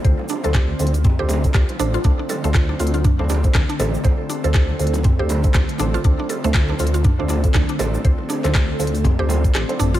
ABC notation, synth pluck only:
X:1
M:4/4
L:1/16
Q:"Swing 16ths" 1/4=120
K:Dm
V:1 name="Synth pluck"
c z D A G z3 C G z2 G z D F | D D A A, F D F F D D D z D D A z | c z D A G z3 C G z2 G z D F | D D A A, F D F F D D D z D D A z |
c z D A G z3 C G z2 G z D F |]